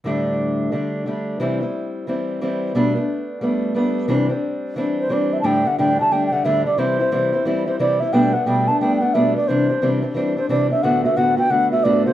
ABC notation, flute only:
X:1
M:4/4
L:1/16
Q:"Swing" 1/4=178
K:Dmix
V:1 name="Flute"
z16 | z16 | z16 | z8 z2 c2 d2 e3/2 a/2 |
g2 f2 g2 a2 g3/2 g/2 f2 e2 d2 | c8 z2 c2 d2 e2 | g2 f2 g2 a2 g3/2 g/2 f2 e2 d2 | c4- c z4 z c2 d2 e2 |
f2 e2 f2 g2 f2 e2 d2 c2 |]